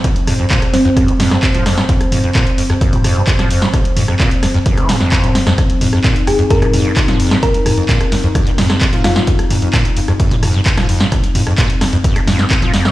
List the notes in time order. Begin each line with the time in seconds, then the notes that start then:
Already playing: F3 C4 C5
0.04 F2, kick, closed hi-hat
0.16 closed hi-hat
0.27 F2, cross-stick, mid tom, open hi-hat
0.39 F2, closed hi-hat
0.50 A#2, kick, clap, closed hi-hat
0.62 cross-stick, closed hi-hat
0.74 F2 C4, snare, open hi-hat
0.85 F2 C4, closed hi-hat
0.97 F#2, kick, cross-stick, closed hi-hat
1.08 F3, closed hi-hat
1.20 F2, snare, mid tom, open hi-hat
1.31 G#2, cross-stick, snare, closed hi-hat
1.43 kick, clap, closed hi-hat
1.54 F3, closed hi-hat, mid tom
1.66 F2, cross-stick, snare, open hi-hat
1.78 A#2, snare, closed hi-hat
1.89 F2, kick, closed hi-hat
2.01 cross-stick, closed hi-hat
2.12 F2, mid tom, open hi-hat
2.24 F2, closed hi-hat
2.35 A#2, kick, cross-stick, clap, closed hi-hat
2.47 closed hi-hat
2.58 F2, open hi-hat
2.70 F2, cross-stick, closed hi-hat
2.81 F#2, kick, closed hi-hat
2.93 F3, closed hi-hat, mid tom
3.04 F2, cross-stick, mid tom, open hi-hat
3.16 G#2, closed hi-hat
3.27 kick, clap, closed hi-hat
3.39 F3, cross-stick, snare, closed hi-hat, mid tom
3.50 F2, open hi-hat
3.62 A#2, snare, closed hi-hat
3.74 F2, kick, cross-stick, closed hi-hat
3.85 closed hi-hat
3.97 F2, mid tom, open hi-hat
4.08 F2, cross-stick, closed hi-hat
4.20 A#2, kick, clap, closed hi-hat
4.31 closed hi-hat
4.43 F2, cross-stick, snare, open hi-hat
4.54 F2, closed hi-hat
4.66 F#2, kick, closed hi-hat
4.77 F3, cross-stick, closed hi-hat
4.89 C3, snare, mid tom, open hi-hat
5.01 F2, snare, closed hi-hat
5.12 kick, cross-stick, clap, closed hi-hat
5.24 F3, closed hi-hat, mid tom
5.35 F2, snare, open hi-hat
5.47 F2, cross-stick, snare, closed hi-hat
5.58 F2 D#4, kick, cross-stick, closed hi-hat
5.70 closed hi-hat
5.81 F2, mid tom, open hi-hat
5.93 F2, cross-stick, closed hi-hat
6.04 A#2, kick, clap, closed hi-hat
6.16 closed hi-hat
6.27 F2 G#4, cross-stick, open hi-hat
6.39 F2, closed hi-hat
6.50 F#2 A#4, kick, closed hi-hat
6.62 F3, cross-stick, closed hi-hat, mid tom
6.74 F2, mid tom, open hi-hat
6.85 G#2, closed hi-hat
6.97 kick, cross-stick, clap, closed hi-hat
7.08 F3, snare, closed hi-hat, mid tom
7.20 F2, open hi-hat
7.31 A#2, cross-stick, snare, closed hi-hat
7.43 F2 A#4, kick, closed hi-hat
7.54 closed hi-hat
7.66 F2, cross-stick, mid tom, open hi-hat
7.78 F2, closed hi-hat
7.89 A#2, kick, clap, closed hi-hat
8.01 cross-stick, closed hi-hat
8.12 F2, snare, open hi-hat
8.24 F2, closed hi-hat
8.35 F#2, kick, cross-stick, closed hi-hat
8.47 F3, closed hi-hat
8.58 F2, snare, mid tom, open hi-hat
8.70 G#2, cross-stick, snare, closed hi-hat
8.81 kick, clap, closed hi-hat
8.93 F3, closed hi-hat, mid tom
9.04 F2 F4, cross-stick, snare, open hi-hat
9.16 A#2, snare, closed hi-hat
9.27 F2, kick, closed hi-hat
9.39 cross-stick, closed hi-hat
9.50 F2, mid tom, open hi-hat
9.62 F2, closed hi-hat
9.74 A#2, kick, cross-stick, clap, closed hi-hat
9.85 closed hi-hat
9.97 F2, open hi-hat
10.08 F2, cross-stick, closed hi-hat
10.20 F#2, kick, closed hi-hat
10.31 F3, closed hi-hat, mid tom
10.43 F2, cross-stick, mid tom, open hi-hat
10.54 G#2, closed hi-hat
10.66 kick, clap, closed hi-hat
10.77 F3, cross-stick, snare, closed hi-hat, mid tom
10.89 F2, open hi-hat
11.00 A#2, snare, closed hi-hat
11.12 F2, kick, cross-stick, closed hi-hat
11.24 closed hi-hat
11.35 F2, mid tom, open hi-hat
11.47 F2, cross-stick, closed hi-hat
11.58 A#2, kick, clap, closed hi-hat
11.70 closed hi-hat
11.81 F2, cross-stick, snare, open hi-hat
11.93 F2, closed hi-hat
12.04 F#2, kick, closed hi-hat
12.16 F3, cross-stick, closed hi-hat
12.27 F2, snare, mid tom, open hi-hat
12.39 G#2, snare, closed hi-hat
12.51 kick, cross-stick, clap, closed hi-hat
12.62 F3, closed hi-hat, mid tom
12.74 F2, snare, open hi-hat
12.85 A#2, cross-stick, snare, closed hi-hat